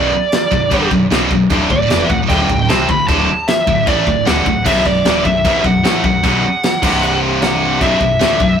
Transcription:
Already playing: B1 F#2 B2 D5
0.32 snare, china
0.51 B1 F#2, kick
0.71 G1 G2 D3 G3, kick, china
0.91 B1 F#2, kick
1.11 B1 F#2 B2, snare, china
1.31 B1 F#2, kick
1.50 D1 D2 A2 D3, kick, china
1.70 D1 D2 A2 D5, kick
1.90 E1 E2 B2 E3, snare, china
2.04 E5
2.10 D1 D2 A2 F#5, kick
2.29 D1 D2 A2 D3 G5, kick, china
2.49 D1 D2 A2, kick
2.69 C2 C3 G3 C4 A5, snare, china
2.89 D1 D2 A2 B5, kick
3.08 D1 D2 A2 D3 A5, kick, china
3.48 E5, snare, china
3.67 D1 D2 A2, kick
3.86 A1 A2 E3 A3 D5, kick, china
4.07 D1 D2 A2, kick
4.26 D1 D2 A2 D3 F#5, snare, china
4.46 D1 D2 A2, kick
4.66 B1 F#2 B2 E5, kick, crash, china
4.85 B1 F#2 D5, kick
5.05 D1 D2 A2 D3, snare, china
5.25 B1 F#2 E5, kick
5.45 B1 F#2 B2, kick, china
5.64 B1 F#2 F#5, kick
5.83 A1 A2 E3 A3, snare, china
6.03 B1 F#2 F#5, kick
6.23 B1 F#2 B2, kick, china
6.63 snare, china
6.82 C1 C2 G2 C3, kick, crash
7.03 china
7.42 F#5, snare, china
7.79 B1 F#2 B2 E5, kick, china
8.00 B1 F#2, kick
8.20 D1 D2 A2 D3, snare, china
8.40 B1 F#2, kick

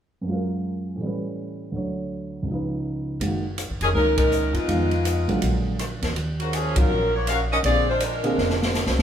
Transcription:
0.21 F#2 F#3
0.27 G#3 F4
0.32 A#4
0.96 A2 E3
1.01 G3 C#4
1.07 B4
1.72 D2 D3 F#3 E4
1.76 C#5
2.43 C#2 C#3
2.48 F3 D#4
2.54 B4
3.20 F#1 D#3 G#3 A#3 F#4, ride
3.58 hi-hat pedal, ride
3.70 G#1
3.81 F1 D#3 A#3 C#4 G#4, ride
3.93 C#2 D#3 G#3 A#3 C#4 D#4 A#4
4.17 G#3 C#4 D#4 A#4, kick, ride
4.32 hi-hat pedal
4.54 C3 G#3 B3 D#4 F4, ride
4.68 F2 D#3 G#3 B3 F4, ride
4.91 ride
5.05 hi-hat pedal, ride
5.28 A1 D3 F#3 G#3 A#3, ride
5.42 A#1, ride
5.79 cross-stick, hi-hat pedal, ride
6.02 E2, snare, ride
6.14 D#2, ride
6.40 C#3 F3 A#3 F#4, ride
6.53 F3 A#3 C#4 G#4, hi-hat pedal, ride
6.76 C#2 D#3 F#3 C#4 F4 A#4, kick, ride
6.89 A#1
7.15 A#3 F4 F#4 C#5
7.27 C#4 F#4 A#4 F5, cross-stick, hi-hat pedal, ride
7.52 C#4 F#4 A#4 D#5
7.63 A#1 D3 A#3 C4 F4 G#4 D5, ride
7.89 G#3 D4 F4 C5
8.00 G#3 D4 F4 A#4, hi-hat pedal, ride
8.23 D3 A#3 C4 G#4, ride
8.37 F1, snare
8.50 snare
8.62 snare
8.74 snare, hi-hat pedal
8.86 C2, snare
8.98 E2, snare

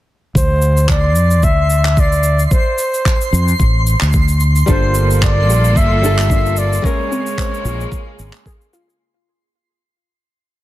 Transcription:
0.35 D2 C5 C6, kick, shaker
0.62 shaker
0.77 shaker
0.89 D5, kick, clap, shaker
1.16 F2, shaker
1.31 shaker
1.43 D2 E5, kick, shaker
1.70 shaker
1.85 clap, shaker
1.97 D5, kick, shaker
2.12 shaker
2.23 shaker
2.39 shaker
2.45 D5
2.51 C5, kick, shaker
2.78 shaker
2.94 shaker
3.05 kick, clap, shaker
3.21 shaker
3.32 F2, shaker
3.48 shaker
3.59 A1, kick, shaker
3.87 shaker
4.01 D2, clap, shaker
4.13 kick, shaker
4.28 shaker
4.40 shaker
4.56 shaker
4.66 G1 G3 A#3 D4 F4 A4 C5, kick, shaker
4.95 shaker
5.10 shaker
5.22 D5, kick, clap, shaker
5.49 A#1 G4, shaker
5.64 shaker
5.76 G1 E5, kick, shaker
6.02 G3 A#3 D4 F4 A4, shaker
6.19 clap, shaker
6.30 D4, kick, shaker
6.46 shaker
6.57 D5, shaker
6.73 shaker
6.82 C#3 G#3 A#3 C#4 A#4 C#5, kick, shaker
7.11 C4, shaker
7.26 shaker
7.38 C5, kick, clap, shaker
7.54 shaker
7.65 A#1 F4, shaker
7.81 shaker
7.92 kick, shaker
8.19 G#1, shaker
8.33 clap, shaker
8.46 G#4, kick, shaker
8.61 shaker
8.73 F4, shaker
8.90 shaker

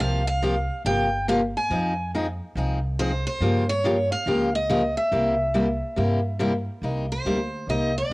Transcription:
0.00 C2 C3 F3 A#3 F4 G4 F5
0.27 F5
0.42 C3 F3 A#3 F4 G4
0.84 G1 C3 F3 A#3 F4 G4 G5
1.28 C3 F3 A#3 F4 G4 F5
1.57 G#5
1.70 F2 F3 C4 D#4 G#4
2.14 F3 C4 D#4 G#4
2.55 C2 F3 C4 D#4 G#4
2.99 F3 C4 D#4 G#4 C5
3.27 C5
3.41 G2 C#3 F3 A#3 F4 G4
3.69 C#5
3.84 C#3 F3 A#3 F4 G4
4.12 F5
4.26 C#2 C#3 F3 A#3 F4 G4
4.55 D#5
4.70 C#3 F3 A#3 F4 G4
4.97 E5
5.12 C2 C3 G3 A#3 E4 G4
5.54 C3 G3 A#3 E4 G4
5.96 G2 C3 G3 A#3 E4 G4
6.39 C3 G3 A#3 E4 G4
6.82 C2 C3 G3 A#3 D#4 G4
7.12 C5
7.25 D2 C3 G3 A#3 D#4 G4
7.67 C2 C3 G3 A#3 D#4 G4 D#5
7.98 D5
8.10 A#1

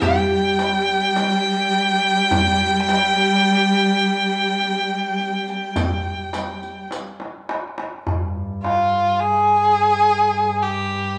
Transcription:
0.01 G3 G4 G5, riq, darbuka dum
0.59 riq, darbuka tek
0.88 riq, darbuka ka
1.16 riq, darbuka tek
2.31 riq, darbuka dum
2.89 riq, darbuka tek
3.46 riq, darbuka ka
4.03 darbuka ka
4.61 riq, darbuka ka
5.18 riq, darbuka ka
5.48 riq
5.76 riq, darbuka dum
6.33 riq, darbuka tek
6.62 riq, darbuka ka
6.91 riq, darbuka tek
7.20 darbuka ka
7.49 darbuka tek
7.78 darbuka ka
8.05 G2, darbuka dum
8.63 F4, darbuka tek
9.20 G#4
9.79 darbuka ka
10.37 darbuka ka
10.62 G4
10.94 darbuka ka

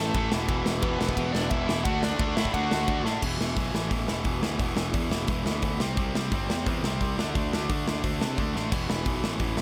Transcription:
Already playing: A1 A2 E3 A3 A4 A5
0.14 A1 A2 E3 A3, kick, ride
0.32 E1 E2 B2 E3, snare
0.48 E1 E2 B2 E3, kick, ride
0.66 E1, snare
0.82 E1 E2 B2 E3 B3 B4, kick, ride
1.00 E1 E2 B2 E3 B3 B4, snare
1.09 kick
1.17 E1 E2 B2 E3, kick, ride
1.33 E1 D4 D5, snare
1.50 E1 E2 B2 E3 E4 E5, kick, ride
1.68 E1 E2 B2 E3, snare
1.84 D2 D3 A3 D4 F#4 F#5, kick, ride
2.02 D4 D5, snare
2.19 D2 D3 A3 D4, kick, ride
2.36 A2 D3 A3 D4 E4 E5, snare
2.45 kick
2.53 D2 D3 A3 D4 F#4 F#5, kick, ride
2.71 D2, snare
2.88 D2 D3 A3 D4, kick, ride
3.04 A2 D3 A3 D4, snare
3.22 E1 E2 B2 E3, kick, crash
3.39 E1 E2 B2 E3, snare
3.57 B1 E2 B2 E3, kick, open hi-hat
3.73 A1 E2 B2 E3, snare
3.91 A1 E2 B2 E3, kick, open hi-hat
4.07 E1 E2 B2 E3, snare
4.24 E1 E2 B2 E3, kick, open hi-hat
4.41 D2 E2 B2 E3, snare
4.59 E1 E2 B2 E3, kick, open hi-hat
4.76 E1 E2 B2 E3, snare
4.94 E2 B2 E3, kick, open hi-hat
5.11 E1 E2 B2 E3, snare
5.28 E1 E2 B2 E3, kick, open hi-hat
5.45 D2 E2 B2 E3, snare
5.62 D2 E2 B2 E3, kick, open hi-hat
5.79 C2 C3 G3 C4, snare
5.97 C2 C3 G3 C4, kick, open hi-hat
6.15 C2 C3 G3 C4, snare
6.32 G1 C3 G3 C4, kick, open hi-hat
6.50 E2 C3 G3 C4, snare
6.66 E2 C3 G3 C4, kick, open hi-hat
6.83 C2 C3 G3 C4, snare
7.01 C2 C3 G3 C4, kick, open hi-hat
7.18 D2 D3 A3 D4, snare
7.35 D2 D3 A3 D4, kick, open hi-hat
7.53 D2 D3 A3 D4, snare
7.69 D3 A3 D4, kick, open hi-hat
7.87 D2 D3 A3 D4, snare
8.03 D2 D3 A3 D4, kick, open hi-hat
8.21 C3 D3 A3 D4, snare
8.38 D2 D3 A3 D4, kick, open hi-hat
8.55 A1 D3 A3 D4, snare
8.72 E1 E2 B2 E3, kick, open hi-hat, crash
8.89 E1 E2 B2 E3, snare
9.06 B1 E2 B2 E3, kick, open hi-hat
9.24 A1 E2 B2 E3, snare
9.40 A1 E2 B2 E3, kick, open hi-hat
9.57 E1 E2 B2 E3, snare

